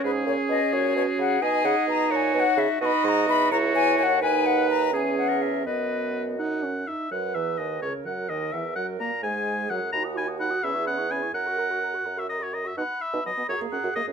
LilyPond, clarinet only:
\new Staff \with { instrumentName = "Clarinet" } { \time 6/8 \key b \major \tempo 4. = 85 gis'4. fis'4. | dis''4. cis''4 r8 | dis''4. cis''4. | b'4. gis'4. |
fis'2~ fis'16 r8. | b'4. ais'4.~ | ais'4. gis'4. | fis'4. gis'4. |
ais'2~ ais'16 r8. | r4. gis'4. | }